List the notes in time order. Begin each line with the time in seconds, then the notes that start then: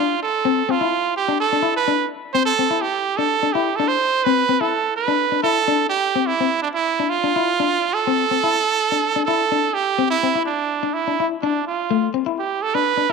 Already playing: F4
0.00 D4
0.23 A4
0.45 C4
0.69 C4 F4
0.81 E4
1.17 G4
1.28 D4
1.40 A4
1.53 D4
1.62 E4
1.76 B4
1.88 D4
2.34 C4 C5
2.46 A4
2.59 C4
2.71 E4
2.81 G4
3.17 D4 A4
3.43 D4
3.53 E4 G4
3.76 D4 A4
3.88 C5
4.24 C4 B4
4.49 C4
4.61 E4 A4
4.96 B4
5.08 D4
5.32 D4
5.43 E4 A4
5.68 D4
5.90 G4
6.16 C4
6.27 E4
6.41 C4
6.62 D4
6.74 E4
7.00 D4
7.09 F4
7.24 D4
7.36 E4
7.60 D4
7.94 A4
8.07 C4
8.31 C4
8.44 E4
8.92 D4
9.16 D4
9.25 E4 A4
9.52 D4
9.74 G4
9.99 C4
10.10 E4
10.23 C4
10.35 E4
10.46 D4
10.83 D4
10.93 E4
11.08 D4
11.20 E4
11.41 D4
11.67 F4
11.91 A3
12.14 C4
12.26 E4
12.39 G4
12.62 A4
12.74 D4 B4
12.97 D4